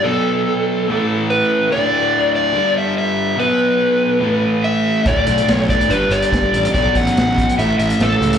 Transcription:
0.03 B2 F#3 B3 A4
0.88 A2 E3 A3
1.30 B4
1.70 D2 A2 D3 D5
2.35 D5
2.53 G2 D3 G3
2.78 E5
2.98 E5
3.36 B2 F#3 B3 B4
4.20 A2 E3 A3
4.64 E5
5.04 D1 D2 A2 D3 D5, kick, closed hi-hat
5.26 B1, closed hi-hat
5.38 closed hi-hat
5.48 B1, snare, closed hi-hat
5.53 C#5
5.69 D5, kick, closed hi-hat
5.81 closed hi-hat
5.88 G1 G2 D3 G3 B4, closed hi-hat
6.09 G1 D5, closed hi-hat
6.22 closed hi-hat
6.32 G1, kick, snare, closed hi-hat
6.53 A1, closed hi-hat
6.65 closed hi-hat
6.72 B1 B2 F#3 B3 D5, kick, closed hi-hat
6.95 A1 F#5, kick, closed hi-hat
7.07 snare, closed hi-hat
7.17 A1, snare, closed hi-hat
7.38 kick, closed hi-hat
7.49 closed hi-hat
7.58 A1 A2 E3 A3 E5, closed hi-hat
7.79 A1 E5, closed hi-hat
7.90 closed hi-hat
8.00 A1 A4, snare, closed hi-hat
8.21 C#2, closed hi-hat
8.33 closed hi-hat

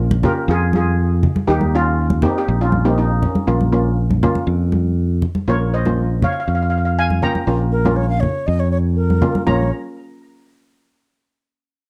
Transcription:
Already playing: A#1
0.11 high conga
0.23 A#3 C#4 F4 G4 A#4, low conga
0.48 F2 F4 G#4
0.73 F4 G#4, high conga
1.23 low conga
1.36 high conga
1.47 D#2 A#3 D#4 G4
1.61 high conga
1.75 C#4 F4
2.10 high conga
2.22 A#3 C4 D#4 G4, low conga
2.38 D#4 G4
2.48 A#1
2.61 C#4 F4
2.72 high conga
2.85 A#3 C4 D#4 G4
2.98 A#3 D#4
3.22 A#3 C#4, low conga
3.35 high conga
3.47 A#1 A#3 C#4 F4
3.61 high conga
3.73 A#3 C#4 F4
4.11 high conga
4.23 A#3 C#4 F4, low conga
4.35 high conga
4.47 F2
4.72 high conga
5.22 low conga
5.35 high conga
5.48 A#1 A#3 C#4 F4 A#4 C#5
5.74 C5 D#5
5.85 A#3 C#4 F4, high conga
6.22 C#5 F5, high conga, low conga
6.32 F5
6.40 F5
6.48 F2 F5
6.55 F5
6.62 F5
6.70 F5
6.78 F5
6.85 F5
6.99 F5 G#5
7.10 high conga
7.22 A#3 C#4 F4 G5 A#5, low conga
7.35 high conga
7.47 A#1 A#3 C#4 F4
7.72 A#4
7.85 A#3 C#4 F4, high conga
7.96 C#5
8.09 F5
8.20 C#5, low conga
8.47 F2 D#5
8.60 C#5
8.71 C#5
8.96 A#4
9.10 high conga
9.22 A#3 C#4 F4, low conga
9.35 high conga
9.47 A#1 A#3 C#4 F4 C#5 A#5, high conga

